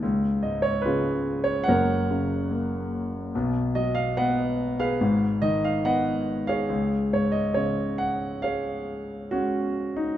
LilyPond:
<<
  \new Staff \with { instrumentName = "Grand piano" } { \time 4/4 \key cis \mixolydian \tempo 4 = 71 << { r8 dis''16 cis''16 b'8. cis''16 fis''4. r8 | r8 dis''16 eis''16 fis''8. eis''8 r16 dis''16 eis''16 fis''8. eis''16~ | eis''16 r16 cis''16 dis''16 cis''8 fis''8 eis''4 fis'8. dis'16 | } \\ { r4 <eis' gis'>4 <ais' cis''>2 | r4 <b' dis''>8. <gis' b'>4~ <gis' b'>16 <b' dis''>8. <gis' cis''>16~ | <gis' cis''>4.~ <gis' cis''>16 r16 <gis' cis''>4 cis'4 | } >> }
  \new Staff \with { instrumentName = "Grand piano" } { \clef bass \time 4/4 \key cis \mixolydian cis,8 gis,8 cis4 <fis,, fis,>8 cis8 ais4 | <b,, b,>8 fis8 b4 <gis,, gis,>8 dis8 b4 | cis,8 gis,8 cis2 gis4 | }
>>